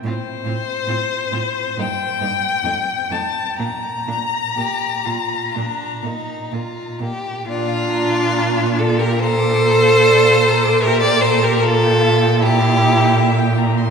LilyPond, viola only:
\new Staff \with { instrumentName = "Viola" } { \time 4/4 \key bes \major \tempo 4 = 70 c'8 c'8 c'8 c'8 bes8 bes8 a8 a8 | bes8 bes8 bes8 bes8 bes8 bes8 bes8 bes8 | d'4. f'16 g'16 a'2 | g'16 bes'16 a'16 g'16 f'4 e'4. r8 | }